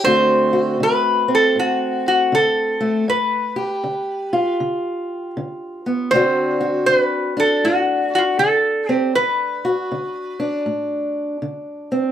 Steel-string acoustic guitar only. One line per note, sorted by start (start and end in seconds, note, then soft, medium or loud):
0.04 0.75 D2 medium
0.04 0.79 D3 medium
0.04 2.79 A3 medium
0.04 1.27 C4 medium
0.04 0.52 F#4 medium
0.53 3.05 F#4 medium
0.80 1.51 D3 medium
1.28 3.05 C4 medium
1.55 2.27 A2 medium
2.32 3.03 D3 medium
2.81 3.05 A3 medium
3.08 3.79 G2 medium
3.56 6.08 G4 medium
3.84 4.54 D3 medium
4.33 6.08 F4 medium
4.60 5.30 D3 medium
5.37 6.07 D3 medium
5.86 6.09 B3 medium
6.12 6.82 D2 medium
6.12 6.87 D3 medium
6.12 8.88 C4 medium
6.12 7.36 D4 medium
6.12 6.60 F#4 medium
6.61 9.12 F#4 medium
6.88 7.58 D3 medium
7.37 10.39 D4 medium
7.64 8.34 A2 medium
8.39 9.09 D3 medium
8.89 9.12 C4 medium
9.16 9.85 D2 medium
9.65 12.12 F#4 medium
9.92 10.61 D3 medium
10.40 12.12 D4 medium
10.66 11.36 A2 medium
11.42 12.12 D3 medium
11.92 12.12 C4 medium